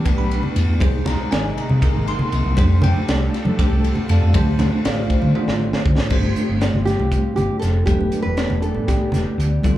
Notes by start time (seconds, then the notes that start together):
Already playing: E3 B3 D4 G4 A5
0.04 A3 D4 G4 B4, kick, ride, low conga
0.18 B1 B5
0.31 ride, low conga
0.43 low conga
0.56 E2, ride, low conga
0.69 E2
0.80 C2 C3 G#3 A#3 D#4 G#4 C5, kick, ride, high conga, low conga
1.06 C2 A#5, snare, ride, low conga
1.31 G#1 A#3 D#4 G#4 D#5 G#5, snare, ride, low conga
1.58 A#5, ride
1.69 C3, high conga, low conga
1.82 A#3 D#4 G#4 A#4, kick, ride, low conga
1.95 G#1
2.07 C6, ride, low conga
2.19 muted fingered electric bass stroke, low conga
2.32 C2, ride, low conga
2.46 C2
2.56 F2 F3 A3 D4 G4 A4 C5, kick, ride, high conga, low conga
2.82 F2 G5, ride, low conga
2.96 muted fingered electric bass stroke
3.08 C2 A3 D4 G4 D5, snare, ride, low conga
3.34 snare, ride
3.45 F3, high conga, low conga
3.58 A3 D4 G4 C5, muted fingered electric bass stroke, kick, snare, ride, low conga
3.72 C2
3.83 ride, low conga
3.95 low conga
4.08 F2 A4 D5 F5 A5, ride, low conga
4.23 F2
4.33 D2 D3 A3 C4 D4 F4 G4 C5, kick, ride, high conga
4.59 D2, snare, ride, low conga
4.71 low conga
4.84 A1 A3 D4 F4 G4 C5 D5 F5, snare, ride
4.98 low conga
5.10 F4 C5 D5 F5, kick, ride
5.22 D3, high conga, low conga
5.35 A3 D4 G4 C5, muted fingered electric bass stroke, high tom, low conga
5.48 A1, snare
5.73 muted fingered electric bass stroke, snare
5.85 D2, kick, low conga
5.98 A1, snare
6.10 G1 G3 A3 C4 D4 F4 G4 C5, kick, crash, high conga
6.23 low conga
6.36 closed hi-hat
6.49 G1
6.60 A3 D4 G4 C5, snare, closed hi-hat
6.74 G1, low conga
6.85 G4, snare, closed hi-hat, low conga
6.99 C2, high conga
7.11 A3 D4 G4 C5, kick, closed hi-hat
7.36 G1 G4, closed hi-hat, low conga
7.59 F1 A4, snare, closed hi-hat, low conga
7.86 E1 E3 A3 B3 D4 G4 B4, kick, closed hi-hat, high conga
8.01 low conga
8.12 closed hi-hat
8.22 E1 B4
8.37 A3 D4 G4 D5, snare, closed hi-hat
8.50 E1, low conga
8.62 A4, closed hi-hat
8.74 A1, high conga
8.87 A3 D4 G4 D5, kick, snare, closed hi-hat
9.01 low conga
9.12 E1, snare, closed hi-hat, low conga
9.38 D2, closed hi-hat, low conga
9.63 D2 D3 G3 C4 F4 A4, kick, closed hi-hat, high conga